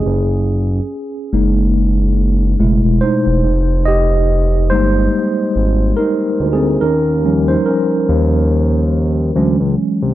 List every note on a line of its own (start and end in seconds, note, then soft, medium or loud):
0.00 0.45 C#4 medium
0.00 0.44 G#4 medium
0.06 0.81 F#1 loud
1.33 2.55 F#1 medium
1.33 2.55 G#3 medium
1.33 2.56 A#3 soft
1.33 2.56 D#4 medium
2.59 2.81 F#1 medium
2.59 3.40 B2 soft
2.59 3.40 G#3 medium
2.59 3.40 A3 soft
2.59 3.41 E4 medium
2.84 3.00 E1 medium
3.01 3.83 D#4 medium
3.01 3.82 C5 medium
3.27 3.42 E1 loud
3.44 4.73 F1 loud
3.85 4.67 G4 medium
3.85 4.66 D#5 loud
4.70 5.08 G1 medium
4.70 5.30 G3 medium
4.70 5.30 G#3 soft
4.70 5.30 A#3 soft
4.70 5.94 D#4 medium
4.70 6.01 C5 loud
5.55 5.93 G#1 medium
5.97 6.51 D#4 medium
5.97 6.55 A#4 medium
6.40 6.77 D2 medium
6.53 6.81 C4 medium
6.53 6.79 G#4 medium
6.81 7.57 D#2 loud
6.81 7.24 C#4 medium
6.81 7.50 A#4 medium
7.24 9.31 F3 medium
7.24 9.32 G3 medium
7.24 7.67 C#4 medium
7.48 7.66 D#4 medium
7.48 7.67 C5 medium
7.66 9.32 C#4 medium
7.66 9.31 A#4 medium
8.09 9.32 D#2 medium
9.35 9.57 D2 loud
9.35 10.14 E3 medium
9.35 10.14 F#3 soft
9.35 10.14 G#3 medium
9.35 10.14 C#4 medium
9.60 9.76 C#2 medium
10.02 10.14 C2 medium